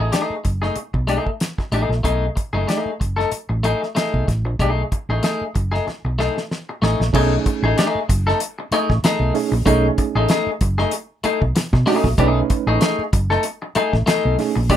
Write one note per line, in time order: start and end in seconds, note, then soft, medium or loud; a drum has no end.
0.00 0.11 A3 medium
0.00 0.11 D#4 soft
0.00 0.12 G#4 medium
0.12 0.34 A3 medium
0.12 0.34 D#4 medium
0.12 0.35 G#4 medium
0.12 snare loud
0.12 closed hi-hat medium
0.30 muted fingered electric bass stroke soft
0.44 0.68 F#1 medium
0.44 muted clean electric guitar stroke soft
0.44 kick medium
0.44 closed hi-hat medium
0.62 0.75 A3 medium
0.62 0.76 D#4 medium
0.62 0.75 G#4 medium
0.62 snare soft
0.76 muted fingered electric bass stroke soft
0.76 muted clean electric guitar stroke soft
0.76 closed hi-hat medium
0.94 1.17 B1 medium
0.94 muted clean electric guitar stroke soft
0.94 kick medium
1.07 1.30 A3 medium
1.07 1.26 D#4 medium
1.07 1.25 G#4 loud
1.07 closed hi-hat medium
1.26 muted clean electric guitar stroke soft
1.26 kick medium
1.40 muted clean electric guitar stroke soft
1.40 snare loud
1.40 closed hi-hat medium
1.58 muted clean electric guitar stroke soft
1.58 kick medium
1.58 snare soft
1.72 1.85 A1 medium
1.72 1.94 A3 medium
1.72 1.90 D#4 medium
1.72 1.89 G#4 medium
1.72 closed hi-hat medium
1.89 2.00 A#1 medium
1.89 muted clean electric guitar stroke soft
1.89 snare soft
2.03 2.28 B1 loud
2.03 2.24 A3 medium
2.03 2.25 D#4 medium
2.03 2.25 G#4 medium
2.03 kick medium
2.03 closed hi-hat medium
2.36 muted clean electric guitar stroke soft
2.36 kick medium
2.36 closed hi-hat medium
2.53 2.64 F#1 medium
2.53 2.66 A3 medium
2.53 2.67 D#4 medium
2.53 2.67 G#4 medium
2.67 2.89 A3 medium
2.67 2.90 D#4 medium
2.67 2.90 G#4 medium
2.67 snare medium
2.67 closed hi-hat medium
2.85 muted fingered electric bass stroke soft
3.00 3.24 F#1 medium
3.00 muted clean electric guitar stroke soft
3.00 kick medium
3.00 closed hi-hat medium
3.16 3.30 A3 soft
3.16 3.31 D#4 medium
3.16 3.30 A4 medium
3.16 snare soft
3.31 muted clean electric guitar stroke soft
3.31 muted fingered electric bass stroke soft
3.31 closed hi-hat medium
3.49 3.73 A1 medium
3.49 muted clean electric guitar stroke soft
3.63 3.84 A3 medium
3.63 3.83 D#4 medium
3.63 3.81 G#4 loud
3.63 closed hi-hat medium
3.82 muted clean electric guitar stroke soft
3.82 snare soft
3.95 4.25 A3 medium
3.95 4.25 D#4 medium
3.95 4.26 G#4 medium
3.95 snare loud
3.95 closed hi-hat medium
4.14 4.24 B1 medium
4.14 kick medium
4.27 4.45 A1 medium
4.27 muted clean electric guitar stroke soft
4.27 kick medium
4.27 snare soft
4.27 closed hi-hat medium
4.45 4.55 A#1 medium
4.45 muted clean electric guitar stroke soft
4.59 4.82 B1 medium
4.59 4.81 A3 medium
4.59 4.82 D#4 medium
4.59 4.82 G#4 medium
4.59 kick loud
4.59 closed hi-hat medium
4.92 muted clean electric guitar stroke soft
4.92 kick loud
4.92 closed hi-hat medium
5.09 5.19 A1 medium
5.09 5.21 A3 soft
5.09 5.23 D#4 soft
5.09 5.22 G#4 medium
5.23 5.43 A3 medium
5.23 5.44 D#4 medium
5.23 5.44 G#4 medium
5.23 snare loud
5.23 closed hi-hat medium
5.41 muted fingered electric bass stroke soft
5.55 5.78 F#1 medium
5.55 muted clean electric guitar stroke soft
5.55 kick medium
5.55 closed hi-hat medium
5.72 5.86 A3 soft
5.72 5.86 D#4 soft
5.72 5.85 G#4 medium
5.72 snare soft
5.87 muted clean electric guitar stroke soft
5.87 muted fingered electric bass stroke soft
5.87 snare soft
6.05 6.28 B1 medium
6.05 muted clean electric guitar stroke soft
6.19 6.39 A3 medium
6.19 6.37 D#4 medium
6.19 6.36 G#4 medium
6.19 snare medium
6.37 muted clean electric guitar stroke soft
6.37 snare medium
6.51 muted clean electric guitar stroke soft
6.51 snare medium
6.69 muted clean electric guitar stroke medium
6.82 6.95 A1 medium
6.82 7.02 A3 medium
6.82 7.01 D#4 medium
6.82 6.99 G#4 medium
6.82 snare medium
7.00 7.10 A#1 medium
7.00 muted clean electric guitar stroke medium
7.00 snare medium
7.13 7.36 B1 loud
7.13 7.83 A3 loud
7.13 7.34 A3 medium
7.13 7.83 C#4 medium
7.13 7.83 D#4 medium
7.13 7.35 D#4 medium
7.13 7.84 G#4 medium
7.13 7.35 G#4 medium
7.13 kick loud
7.13 crash medium
7.46 muted clean electric guitar stroke soft
7.46 kick loud
7.46 closed hi-hat medium
7.63 7.73 A1 medium
7.63 7.76 A3 medium
7.63 7.77 D#4 medium
7.63 7.76 G#4 medium
7.78 7.98 A3 medium
7.78 7.99 D#4 medium
7.78 7.99 G#4 medium
7.78 snare loud
7.78 closed hi-hat loud
7.95 muted fingered electric bass stroke soft
8.09 8.32 F#1 loud
8.09 muted clean electric guitar stroke soft
8.09 kick loud
8.09 closed hi-hat loud
8.27 8.40 A3 medium
8.27 8.40 D#4 medium
8.27 8.39 A4 medium
8.27 snare soft
8.40 muted clean electric guitar stroke soft
8.40 closed hi-hat loud
8.59 muted clean electric guitar stroke medium
8.71 8.92 A3 loud
8.71 8.90 D#4 loud
8.71 8.89 G#4 loud
8.71 muted fingered electric bass stroke medium
8.71 closed hi-hat medium
8.90 9.00 A1 medium
8.90 muted clean electric guitar stroke soft
8.90 kick medium
8.90 snare soft
9.03 9.33 A3 medium
9.03 9.33 D#4 loud
9.03 9.34 G#4 loud
9.03 muted fingered electric bass stroke soft
9.03 snare loud
9.03 closed hi-hat loud
9.20 9.30 B1 medium
9.34 9.53 A3 medium
9.34 9.53 C#4 medium
9.34 9.54 D#4 medium
9.34 9.54 G#4 loud
9.34 muted clean electric guitar stroke soft
9.34 open hi-hat medium
9.52 9.62 A#1 loud
9.52 muted clean electric guitar stroke soft
9.65 9.89 B1 loud
9.65 10.35 A3 medium
9.65 9.86 A3 medium
9.65 10.35 C#4 medium
9.65 10.36 D#4 medium
9.65 9.87 D#4 medium
9.65 10.36 G#4 loud
9.65 9.87 G#4 medium
9.65 kick loud
9.65 closed hi-hat medium
9.98 muted clean electric guitar stroke soft
9.98 kick loud
9.98 closed hi-hat medium
10.15 10.25 A1 medium
10.15 10.28 A3 medium
10.15 10.29 D#4 medium
10.15 10.28 G#4 medium
10.29 10.49 A3 medium
10.29 10.50 D#4 medium
10.29 10.50 G#4 medium
10.29 snare loud
10.29 closed hi-hat medium
10.46 muted fingered electric bass stroke soft
10.61 10.84 F#1 medium
10.61 muted clean electric guitar stroke soft
10.61 kick loud
10.61 closed hi-hat medium
10.78 10.92 A3 medium
10.78 10.91 D#4 medium
10.78 10.91 G#4 medium
10.78 snare soft
10.91 muted clean electric guitar stroke soft
10.91 closed hi-hat loud
11.24 11.40 A3 medium
11.24 11.40 D#4 medium
11.24 11.40 G#4 medium
11.24 muted fingered electric bass stroke soft
11.24 closed hi-hat medium
11.41 11.52 B1 medium
11.41 muted clean electric guitar stroke medium
11.41 kick medium
11.55 muted clean electric guitar stroke soft
11.55 snare loud
11.55 closed hi-hat loud
11.73 11.83 B2 loud
11.73 muted clean electric guitar stroke medium
11.73 kick medium
11.73 snare soft
11.86 12.05 A3 medium
11.86 12.07 A3 loud
11.86 12.05 C#4 medium
11.86 12.04 D#4 medium
11.86 12.06 D#4 medium
11.86 12.06 F#4 medium
11.86 12.04 G#4 medium
11.86 open hi-hat medium
12.04 12.14 A#1 loud
12.04 muted clean electric guitar stroke medium
12.04 kick medium
12.04 snare soft
12.18 12.41 B1 loud
12.18 12.39 A3 medium
12.18 12.87 A3 medium
12.18 12.87 C#4 medium
12.18 12.39 D#4 medium
12.18 12.88 D#4 medium
12.18 12.40 G#4 loud
12.18 12.88 B4 loud
12.18 kick loud
12.18 closed hi-hat medium
12.50 muted clean electric guitar stroke medium
12.50 kick loud
12.50 closed hi-hat medium
12.67 12.77 A1 loud
12.67 12.79 A3 medium
12.67 12.80 D#4 medium
12.67 12.80 G#4 medium
12.81 13.01 A3 medium
12.81 13.02 D#4 medium
12.81 13.02 G#4 loud
12.81 snare loud
12.81 closed hi-hat loud
12.98 muted fingered electric bass stroke soft
13.13 13.36 F#1 medium
13.13 muted clean electric guitar stroke soft
13.13 kick loud
13.13 closed hi-hat medium
13.30 13.44 A3 medium
13.30 13.43 D#4 medium
13.30 13.43 A4 medium
13.30 snare soft
13.43 muted clean electric guitar stroke soft
13.43 closed hi-hat loud
13.62 muted clean electric guitar stroke soft
13.75 13.95 A3 loud
13.75 13.94 D#4 loud
13.75 13.92 G#4 loud
13.75 muted fingered electric bass stroke soft
13.75 closed hi-hat medium
13.93 14.03 A1 medium
13.93 muted clean electric guitar stroke soft
13.93 kick medium
13.93 snare soft
14.06 14.36 A3 loud
14.06 14.36 D#4 loud
14.06 14.36 G#4 loud
14.06 snare loud
14.06 closed hi-hat medium
14.25 14.35 B1 loud
14.38 14.57 A3 medium
14.38 14.57 C#4 medium
14.38 14.57 D#4 medium
14.38 14.58 G#4 loud
14.38 muted clean electric guitar stroke soft
14.38 snare soft
14.38 open hi-hat medium
14.56 14.69 A#1 loud
14.56 muted clean electric guitar stroke medium
14.69 14.77 B1 loud
14.69 14.77 A3 medium
14.69 14.77 A3 loud
14.69 14.77 C#4 medium
14.69 14.77 D#4 medium
14.69 14.77 F#4 medium
14.69 14.77 G#4 loud
14.69 kick loud
14.69 closed hi-hat medium